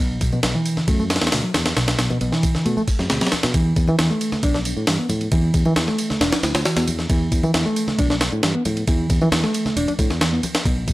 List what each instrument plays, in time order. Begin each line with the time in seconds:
0.00 picked electric bass B1, reed electric piano B2
0.21 picked electric bass B1, kick, ride, tambourine
0.32 reed electric piano B2, tambourine, high conga
0.43 picked electric bass B1, reed electric piano B2, snare, ride, tambourine
0.55 reed electric piano E3, tambourine
0.66 ride, tambourine
0.77 snare, tambourine, low conga
0.88 picked electric bass F#2, reed electric piano A3, kick, ride, tambourine
0.99 reed electric piano A3, tambourine, high conga
1.10 snare, ride, tambourine
1.16 snare, ride
1.21 picked electric bass E2, snare, ride, tambourine
1.27 snare, ride
1.32 picked electric bass D2, reed electric piano B2, snare, open hi-hat, tambourine
1.44 reed electric piano F#3
1.54 picked electric bass E2, snare, ride, tambourine, high conga
1.66 snare, ride, tambourine
1.77 picked electric bass B1, reed electric piano B2, snare, ride, tambourine
1.88 snare, ride, tambourine
1.99 picked electric bass B1, snare, ride, tambourine
2.10 reed electric piano B2, tambourine, high conga
2.21 picked electric bass B1, reed electric piano B2, ride, tambourine
2.32 reed electric piano E3, snare, tambourine
2.43 kick, ride, tambourine
2.55 snare, tambourine, low conga
2.65 picked electric bass B2, reed electric piano A3, ride, tambourine
2.77 reed electric piano A3, tambourine, high conga
2.88 kick, ride, tambourine
2.99 picked electric bass F#2, snare, tambourine
3.10 picked electric bass D2, reed electric piano B2, snare, ride, tambourine
3.21 reed electric piano F#3, snare, ride, tambourine
3.27 snare, ride
3.32 snare, ride, tambourine, high conga
3.43 picked electric bass B2, snare, ride, tambourine
3.54 picked electric bass E2, reed electric piano E3, kick, ride, tambourine
3.76 picked electric bass E2, kick, ride, tambourine
3.88 reed electric piano E3, tambourine, high conga
3.99 picked electric bass E2, reed electric piano E3, snare, ride, tambourine
4.10 reed electric piano A3, tambourine
4.21 ride, tambourine
4.32 snare, tambourine, low conga
4.43 picked electric bass B1, reed electric piano D4, kick, ride, tambourine
4.54 reed electric piano D4, snare, tambourine, high conga
4.65 ride, tambourine
4.77 picked electric bass A2, tambourine
4.87 picked electric bass G2, reed electric piano E3, snare, open hi-hat, tambourine
4.99 reed electric piano B3
5.09 picked electric bass A2, ride, tambourine, high conga
5.21 ride, tambourine
5.32 picked electric bass E2, reed electric piano E3, kick, ride, tambourine
5.54 picked electric bass E2, kick, ride, tambourine
5.65 reed electric piano E3, tambourine, high conga
5.76 picked electric bass E2, reed electric piano E3, snare, ride, tambourine
5.88 reed electric piano A3, snare, tambourine
5.98 ride, tambourine
6.10 snare, tambourine, low conga
6.21 picked electric bass E1, reed electric piano D4, snare, ride, tambourine
6.32 reed electric piano D4, snare, ride, tambourine, high conga
6.43 picked electric bass D2, snare, ride, tambourine
6.54 picked electric bass D2, snare, ride, tambourine
6.65 reed electric piano E3, snare, ride, tambourine
6.77 picked electric bass E2, reed electric piano B3, snare, ride
6.88 ride, tambourine, high conga
6.99 snare, tambourine
7.10 picked electric bass E2, reed electric piano E3, kick, ride, tambourine
7.32 picked electric bass E2, kick, ride, tambourine
7.43 reed electric piano E3, tambourine, high conga
7.54 picked electric bass E2, reed electric piano E3, snare, ride, tambourine
7.66 reed electric piano A3, tambourine
7.76 ride, tambourine
7.87 snare, tambourine, low conga
7.99 picked electric bass B1, reed electric piano D4, kick, ride, tambourine
8.10 reed electric piano D4, snare, tambourine, high conga
8.21 snare, ride, tambourine
8.32 picked electric bass A2, tambourine
8.43 picked electric bass G2, reed electric piano E3, snare, ride, tambourine
8.54 reed electric piano B3
8.65 picked electric bass A2, ride, tambourine, high conga
8.77 ride, tambourine
8.87 picked electric bass E2, reed electric piano E3, kick, ride, tambourine
9.10 picked electric bass E2, kick, ride, tambourine
9.21 reed electric piano E3, tambourine, high conga
9.32 picked electric bass E2, reed electric piano E3, snare, ride, tambourine
9.43 reed electric piano A3, snare, tambourine
9.54 ride, tambourine
9.66 snare, tambourine, low conga
9.76 picked electric bass E1, reed electric piano D4, ride, tambourine
9.88 reed electric piano D4, ride, tambourine, high conga
9.99 picked electric bass A2, kick, ride, tambourine
10.10 picked electric bass E2, snare, tambourine
10.21 reed electric piano E3, snare, ride, tambourine
10.33 reed electric piano B3
10.43 ride, tambourine, high conga
10.55 snare, ride, tambourine
10.65 picked electric bass B1, reed electric piano B2, kick, ride, tambourine
10.88 picked electric bass B1, kick, ride, tambourine